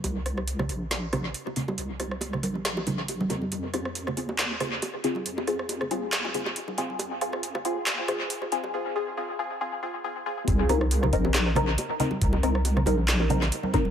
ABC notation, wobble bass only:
X:1
M:4/4
L:1/8
Q:"Swing 16ths" 1/4=138
K:Cm
V:1 name="Wobble bass" clef=bass
C,,3 B,,,3 z2 | C,,3 B,,,4 F,, | F,,3 E,,3 z2 | F,,3 E,,3 z2 |
F,,3 E,,3 z2 | z8 | C,,3 B,,,3 z2 | C,,3 B,,,3 z2 |]